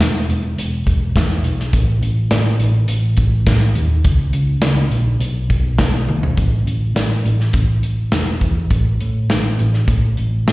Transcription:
0.00 E1, snare, closed hi-hat
0.29 E1, closed hi-hat
0.57 E1, closed hi-hat
0.86 E1, kick, closed hi-hat
1.16 E2, kick, snare, closed hi-hat
1.44 B1, closed hi-hat
1.60 snare
1.73 A1, kick, closed hi-hat
2.02 A1, closed hi-hat
2.31 A2, snare, closed hi-hat
2.59 A1, closed hi-hat
2.88 A1, closed hi-hat
3.17 A1, kick, closed hi-hat
3.47 A1, kick, snare, closed hi-hat
3.75 D#2, closed hi-hat
4.04 C#2, kick, closed hi-hat
4.33 C#2, closed hi-hat
4.62 C#2, snare, closed hi-hat
4.91 A#1, closed hi-hat
5.20 B1, closed hi-hat
5.50 B1, kick, closed hi-hat
5.78 B2, kick, snare, closed hi-hat
6.07 B1, high tom
6.23 floor tom
6.37 A1, kick, closed hi-hat
6.66 A1, closed hi-hat
6.95 A1, snare, closed hi-hat
7.25 A1, closed hi-hat
7.40 snare
7.53 A1, kick, closed hi-hat
7.83 closed hi-hat
8.12 E1, snare, closed hi-hat
8.41 E2, kick, closed hi-hat
8.70 A1, kick, closed hi-hat
9.01 A2, closed hi-hat
9.30 A1, snare, closed hi-hat
9.59 A1, closed hi-hat
9.74 snare
9.88 A2, kick, closed hi-hat
10.17 A1, closed hi-hat
10.47 A1, snare, closed hi-hat

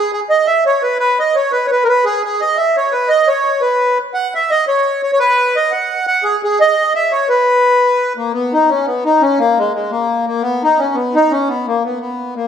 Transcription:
Already playing: G#4
0.13 G#4
0.30 D#5
0.46 E5
0.66 C#5
0.83 B4
0.99 B4
1.19 D#5
1.36 C#5
1.52 B4
1.67 C#5
1.71 B4
1.84 A#4
1.89 B4
2.05 G#4
2.25 G#4
2.41 D#5
2.57 E5
2.77 C#5
2.92 B4
3.08 D#5
3.27 C#5
3.61 B4
4.14 F#5
4.35 E5
4.50 D#5
4.68 C#5
5.03 C#5
5.13 C#5
5.19 B4
5.56 D#5
5.71 F#5
6.07 F#5
6.23 G#4
6.44 G#4
6.60 D#5
6.95 E5
7.12 C#5
7.29 B4
8.17 A#3
8.33 B3
8.53 D#4
8.69 C#4
8.86 B3
9.05 D#4
9.22 C#4
9.39 A#3
9.59 G#3
9.74 G#3
9.91 A#3
10.27 A#3
10.42 B3
10.63 D#4
10.78 C#4
10.94 B3
11.15 D#4
11.31 C#4
11.48 B3
11.67 A#3
11.84 B3
12.00 B3
12.36 A#3

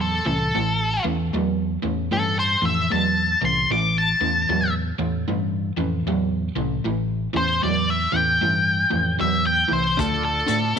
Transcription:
Already playing: E2 A2 F#3
0.01 A4
0.26 C2 A2 E3 A4
0.55 A1 A2 E3
1.04 E2 A2 E3
1.33 E2 A2 F#3
1.83 E2 A2 E3
2.12 G2 A2 E3 A4
2.39 C5
2.62 F2 A2 E3 E5
2.90 E2 A2 F#3 A5
3.41 C2 A2 E3 C6
3.70 A1 A2 E3 D6
3.98 A5
4.21 E2 A2 E3
4.49 E2 A2 F#3
4.99 E2 A2 E3
5.28 G2 A2 E3
5.77 F2 A2 E3
6.06 E2 A2 F#3
6.55 C2 A2 E3
6.84 A1 A2 E3
7.34 E2 A2 E3 C5
7.63 E2 A2 F#3 D5
7.90 E5
8.12 E2 A2 E3 G5
8.41 G2 A2 E3
8.90 F2 A2 E3
9.19 E2 A2 F#3 E5
9.47 G5
9.69 C2 A2 E3
9.73 C5
9.97 D2 D3 A3 D4 F4 A4 D5, kick, closed hi-hat
10.25 A4
10.46 A2 D3 A3, closed hi-hat

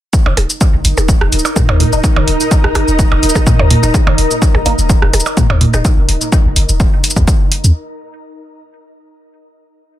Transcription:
0.13 D#4, kick, cabasa
0.26 D#1 D#3, percussion blips
0.37 D#1, closed hi-hat, percussion blips
0.50 cabasa
0.57 A#4
0.61 kick, cabasa
0.73 F#1
0.85 F#1, closed hi-hat, cabasa
0.97 D#1, percussion blips, cabasa
1.09 kick, cabasa
1.21 D#1, cross-stick
1.32 D#1 D#5, closed hi-hat, cabasa
1.39 cabasa
1.45 cabasa, percussion blips
1.56 A#2, kick, percussion blips, cabasa
1.64 A#5
1.69 D#2, percussion blips
1.80 A#2, closed hi-hat
1.93 D#1 D#4, cabasa
2.04 kick, cabasa
2.16 D#1 D#3, percussion blips
2.28 D#1, closed hi-hat
2.40 cabasa
2.51 kick, cabasa
2.64 F#1, cross-stick
2.75 F#1, cross-stick, closed hi-hat, percussion blips, cabasa
2.88 D#1, cabasa
2.99 kick, cabasa
3.12 D#1, percussion blips
3.23 D#1, closed hi-hat, cabasa
3.29 cabasa
3.35 kick, percussion blips, cabasa
3.47 A#2, kick, cabasa
3.59 D#2, percussion blips
3.70 A#2, closed hi-hat
3.83 D#1 D#4, cabasa
3.94 kick, percussion blips, cabasa
4.07 D#1 D#3, percussion blips
4.18 D#1, closed hi-hat
4.31 cabasa
4.42 kick, cabasa
4.54 F#1, percussion blips
4.66 F#1 A#3 D#4 A#4, closed hi-hat, cabasa
4.78 D#1, cabasa
4.90 kick, cabasa
5.02 D#1, cross-stick
5.13 D#1, closed hi-hat, percussion blips, cabasa
5.20 cabasa
5.26 cabasa, percussion blips
5.37 A#2, kick, cabasa
5.50 D#2, percussion blips
5.61 A#2, closed hi-hat
5.74 D#1 D#4, percussion blips, cabasa
5.85 kick, cabasa
5.97 D#1
6.08 D#1, closed hi-hat
6.21 cabasa
6.32 kick, cabasa
6.45 F#1
6.56 F#1, closed hi-hat, cabasa
6.69 D#1, cabasa
6.80 kick, cabasa
7.04 closed hi-hat, cabasa
7.10 cabasa
7.16 D#2, kick, cabasa
7.28 kick, cabasa
7.52 closed hi-hat
7.64 D#2, cabasa

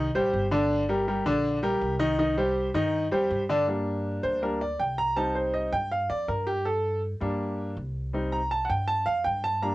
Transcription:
Already playing: C2
0.15 A1 G3 G4 C5
0.33 G1
0.51 D3 D4 D5
0.89 G3 G4 A#4
1.08 G3 G4 A#4
1.26 A#1 D3 D4 D5
1.63 G3 G4 A#4
1.81 C2
1.99 D#3 D#4 D#5
2.19 D#3 D#4 D#5
2.37 G3 G4 C5
2.74 G2 D#3 D#4 D#5
3.11 F2 G3 G4 C5
3.31 G2
3.49 D3 D4 D5
3.67 G3 A#3 D4
4.23 D2 C5
4.42 G3 A#3 D4 A#4
4.61 D5
4.79 C2 G5
4.98 A#5
5.16 G3 C4 D#4 A5
5.35 C5
5.54 D#5
5.72 G2 G5
5.92 F5
6.10 F2 D5
6.28 G2 A#4
6.47 G4
6.65 A4
7.20 G2 G3 A#3 D4
7.77 C2
8.13 G3 C4 D#4
8.32 A#5
8.51 A5
8.65 F#5
8.70 G2 G5
8.88 A5
9.06 F2 F5
9.24 G2 G5
9.44 A5
9.62 G3 A#3 D4 A#5

